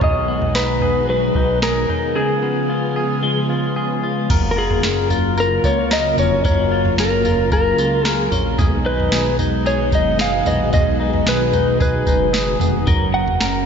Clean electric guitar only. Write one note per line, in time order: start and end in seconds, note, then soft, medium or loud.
0.01 2.16 B2 medium
0.01 0.82 G#4 medium
0.28 2.42 B3 medium
0.55 1.34 D#4 medium
0.82 1.62 G#4 medium
1.09 2.21 F#3 medium
1.36 1.88 D#4 medium
1.63 2.16 G#4 medium
1.89 2.21 D#4 medium
2.15 4.30 C#3 medium
2.15 2.95 G#4 medium
2.43 4.36 B3 medium
2.69 3.49 F4 medium
2.96 3.75 G#4 medium
3.23 4.30 G#3 medium
3.49 4.03 F4 medium
3.76 4.30 G#4 medium
4.03 4.56 F4 medium
4.30 6.44 F#3 medium
4.30 4.83 A#4 medium
4.57 5.09 F4 medium
4.84 5.36 A#4 medium
5.11 5.63 F4 medium
5.38 5.90 A#4 medium
5.64 6.70 F4 medium
5.91 6.44 A#4 medium
6.17 8.31 C#4 medium
6.44 8.62 F#3 medium
6.44 6.97 A#4 medium
6.71 7.24 F4 medium
6.98 7.51 A#4 medium
7.25 7.78 F4 medium
7.52 8.04 A#4 medium
7.79 8.64 F4 medium
8.05 8.58 A#4 medium
8.32 8.64 C#4 medium
8.58 10.72 B2 medium
8.58 9.11 G#4 medium
8.85 9.38 D#4 medium
9.12 9.65 G#4 medium
9.39 9.92 D#4 medium
9.66 10.18 G#4 medium
9.93 10.98 D#4 medium
10.20 10.73 G#4 medium
10.47 12.59 B3 medium
10.73 12.87 B2 medium
10.73 11.25 G#4 medium
11.00 11.52 D#4 medium
11.26 11.79 G#4 medium
11.53 12.05 D#4 medium
11.80 12.32 G#4 medium
12.07 12.92 D#4 medium
12.33 12.87 G#4 medium
12.60 12.92 B3 medium
12.87 13.66 F#3 medium
12.87 13.40 A#4 medium
13.41 13.66 A#4 medium